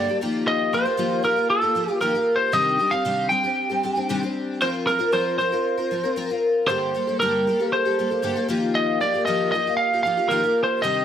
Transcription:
Already playing: lead electric guitar D5
0.08 twelve-string acoustic guitar G3 A#3 G4 A4
0.21 twelve-string acoustic guitar D#3 F3 A#3 F4 G4
0.48 lead electric guitar D#5
0.73 twelve-string acoustic guitar F3 A#3 F4 G4, lead electric guitar C5
0.85 twelve-string acoustic guitar A#3 F4 G4
0.97 twelve-string acoustic guitar D#3 F3 A#3 F4 G4
1.23 twelve-string acoustic guitar F3 A#3 F4 G4, lead electric guitar A#4
1.36 twelve-string acoustic guitar A#3 F4 G4
1.50 lead electric guitar A4
1.61 twelve-string acoustic guitar A#3 F4 G4
1.75 twelve-string acoustic guitar F3 A#3 F4 G4
1.88 twelve-string acoustic guitar A#3 F4 G4
2.01 twelve-string acoustic guitar D#3 F3 A#3 F4 G4, lead electric guitar A#4
2.14 twelve-string acoustic guitar A#3 F4 G4
2.36 lead electric guitar C5
2.52 twelve-string acoustic guitar C3 D#3 G3 C4 D4 G4, lead electric guitar D#5
2.79 twelve-string acoustic guitar G3 C4 D4 G4
2.91 twelve-string acoustic guitar G3 C4 D4 G4, lead electric guitar F5
3.05 twelve-string acoustic guitar C3 D#3 G3 C4 D4 G4
3.29 twelve-string acoustic guitar G3 C4 D4 G4, lead electric guitar G5
3.44 twelve-string acoustic guitar G3 C4 D4 G4
3.70 twelve-string acoustic guitar G3 C4 D4 G4
3.83 twelve-string acoustic guitar G3 C4 D4 G4
3.96 twelve-string acoustic guitar G3 C4 D4 G4
4.09 twelve-string acoustic guitar C3 D#3 G3 C4 D4 G4
4.23 twelve-string acoustic guitar G3 C4 D4 G4
4.61 twelve-string acoustic guitar F3 C4 F4 A#4, lead electric guitar C5
4.87 twelve-string acoustic guitar F3 C4 F4 A#4, lead electric guitar A#4
4.99 twelve-string acoustic guitar C4 F4 A#4
5.12 twelve-string acoustic guitar F3 C4 F4 A#4, lead electric guitar C5
5.38 twelve-string acoustic guitar F3 C4 F4 A#4, lead electric guitar C5
5.52 twelve-string acoustic guitar C4 F4 A#4
5.78 twelve-string acoustic guitar C4 F4 A#4
5.91 twelve-string acoustic guitar F3 C4 F4 A#4
6.04 twelve-string acoustic guitar C4 F4 A#4
6.16 twelve-string acoustic guitar F3 C4 F4 A#4
6.30 twelve-string acoustic guitar C4 F4 A#4
6.68 twelve-string acoustic guitar G2 D3 G3 A#3 G4 A4, lead electric guitar C5
6.94 twelve-string acoustic guitar G3 A#3 G4 A4
7.07 twelve-string acoustic guitar G3 A#3 G4 A4
7.20 twelve-string acoustic guitar G2 D3 G3 A#3 G4 A4, lead electric guitar A#4
7.47 twelve-string acoustic guitar G3 A#3 G4 A4
7.59 twelve-string acoustic guitar G3 A#3 G4 A4
7.73 lead electric guitar C5
7.85 twelve-string acoustic guitar G3 A#3 G4 A4
7.99 twelve-string acoustic guitar G3 A#3 G4 A4
8.10 twelve-string acoustic guitar G3 A#3 G4 A4
8.22 twelve-string acoustic guitar G2 D3 G3 A#3 G4 A4
8.36 twelve-string acoustic guitar G3 A#3 G4 A4
8.48 twelve-string acoustic guitar D#3 F3 A#3 F4 G4
8.75 lead electric guitar D#5
9.00 twelve-string acoustic guitar F3 A#3 F4 G4, lead electric guitar D5
9.14 twelve-string acoustic guitar A#3 F4 G4
9.25 twelve-string acoustic guitar D#3 F3 A#3 F4 G4, lead electric guitar D#5
9.52 twelve-string acoustic guitar F3 A#3 F4 G4, lead electric guitar D#5
9.67 twelve-string acoustic guitar A#3 F4 G4
9.77 lead electric guitar F5
9.93 twelve-string acoustic guitar A#3 F4 G4
10.03 twelve-string acoustic guitar F3 A#3 F4, lead electric guitar F5
10.07 twelve-string acoustic guitar G4
10.17 twelve-string acoustic guitar A#3 F4 G4
10.29 twelve-string acoustic guitar D#3 F3 A#3 F4 G4, lead electric guitar A#4
10.44 twelve-string acoustic guitar A#3 G4
10.64 lead electric guitar C5
10.82 twelve-string acoustic guitar C3 D#3 G3 C4 D4 G4, lead electric guitar D#5

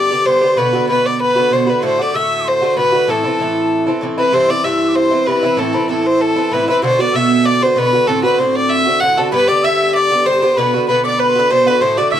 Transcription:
Already playing: bouzouki G2 D3 B3, fiddle D5, tin whistle D6
0.11 bouzouki D3 B3 G4
0.25 bouzouki G2 D3 B3 G4, fiddle C5, tin whistle C6
0.41 bouzouki D3 B3 G4
0.57 bouzouki B2 D3 B3 F#4, fiddle B4, tin whistle B5
0.73 bouzouki D3 B3 F#4
0.87 bouzouki B2 D3 B3 F#4, fiddle B4, tin whistle B5
1.06 fiddle D5
1.20 fiddle B4, tin whistle B5
1.35 bouzouki D3 B3 F#4
1.50 bouzouki B2 D3 B3 F#4, fiddle C5, tin whistle C6
1.62 tin whistle C6
1.66 bouzouki D3 B3 F#4, fiddle B4, tin whistle B5
1.80 bouzouki A2 D3 A3 F#4, tin whistle C6
1.85 fiddle C5
1.99 bouzouki D3 A3 F#4, fiddle D5, tin whistle D6
2.13 bouzouki A2 D3 A3 F#4, fiddle E5, tin whistle E6
2.45 fiddle C5, tin whistle C6
2.62 bouzouki D3 A3 F#4
2.76 bouzouki A2 D3 A3 F#4, fiddle B4, tin whistle B5
2.92 bouzouki D3 A3 F#4
3.07 bouzouki A2 E3 C4 E4, fiddle A4, tin whistle A5
3.24 bouzouki E3 C4 E4
3.39 bouzouki A2 E3 C4 E4
3.87 bouzouki E3 C4 E4
4.01 bouzouki A2 E3 C4 E4
4.17 bouzouki E3 C4 E4, fiddle B4, tin whistle B5
4.32 bouzouki G2 E3 C4 E4, fiddle C5, tin whistle C6
4.49 bouzouki E3 C4 E4, fiddle D5, tin whistle D6
4.64 bouzouki G2 E3 C4 E4, fiddle E5, tin whistle E6
4.88 tin whistle D6
4.95 fiddle C5, tin whistle C6
5.11 bouzouki E3 C4 E4
5.26 bouzouki G2 E3 C4 E4, fiddle B4, tin whistle B5
5.43 bouzouki E3 C4 E4
5.57 bouzouki A2 E3 C4 E4, fiddle A4, tin whistle A5
5.73 bouzouki E3 C4 E4, tin whistle B5
5.88 bouzouki A2 E3 C4 E4, fiddle A4, tin whistle A5
6.06 fiddle C5, tin whistle C6
6.21 fiddle A4, tin whistle A5
6.36 bouzouki E3 C4 E4
6.52 bouzouki A2 E3 C4 E4, fiddle B4, tin whistle B5
6.68 bouzouki E3 C4 E4, fiddle B4, tin whistle B5
6.82 bouzouki B2 D3 B3 F#4, fiddle C5, tin whistle C6
6.99 bouzouki D3 B3 F#4, fiddle D5, tin whistle D6
7.13 bouzouki B2 D3 B3 F#4, fiddle E5, tin whistle E6
7.45 fiddle D5, tin whistle D6
7.62 bouzouki D3 B3 F#4, fiddle C5, tin whistle C6
7.75 bouzouki B2 D3 B3 F#4, fiddle B4, tin whistle B5
7.93 bouzouki D3 B3 F#4
8.07 bouzouki A2 D3 C4 F#4, fiddle A4, tin whistle A5
8.23 bouzouki D3 C4 F#4, fiddle B4, tin whistle B5
8.38 bouzouki A2 D3 C4 F#4, fiddle C5, tin whistle C6
8.55 fiddle D5, tin whistle D6
8.69 fiddle E5, tin whistle E6
8.86 bouzouki D3 C4 F#4
9.00 bouzouki A2 D3 C4 F#4, fiddle F#5, tin whistle F#6
9.17 bouzouki D3 C4 F#4, fiddle A4, tin whistle A5
9.31 bouzouki G2 D3 B3 G4, mandolin B4, fiddle B4, tin whistle B5
9.47 bouzouki D3 B3 G4, fiddle D5, mandolin D5, tin whistle D6
9.63 bouzouki G2 D3 B3 G4, mandolin E5, fiddle E5, tin whistle E6
9.93 fiddle D5, mandolin D5, tin whistle D6
10.12 bouzouki D3 B3 G4
10.24 bouzouki G2 D3 B3, fiddle C5, mandolin C5, tin whistle C6
10.29 bouzouki G4
10.42 bouzouki D3 B3 G4, mandolin C5
10.55 bouzouki B2 D3 B3 F#4, fiddle B4, mandolin B4, tin whistle B5
10.74 bouzouki D3 B3 F#4
10.87 bouzouki B2 D3 B3 F#4, fiddle B4, mandolin B4, tin whistle B5
11.04 mandolin D5, fiddle D5, tin whistle D6
11.18 mandolin B4, fiddle B4, tin whistle B5
11.29 mandolin B4, tin whistle C6
11.36 bouzouki D3 B3 F#4, mandolin B4, tin whistle B5
11.50 bouzouki B2 D3 B3 F#4, mandolin C5, fiddle C5, tin whistle C6
11.66 bouzouki D3 B3 F#4, fiddle B4, mandolin B4
11.80 bouzouki A2 D3 A3 F#4, mandolin C5, fiddle C5, tin whistle C6
11.97 bouzouki D3 A3 F#4, fiddle D5, mandolin D5, tin whistle D6
12.12 bouzouki A2 D3 A3 F#4, mandolin E5, fiddle E5, tin whistle E6

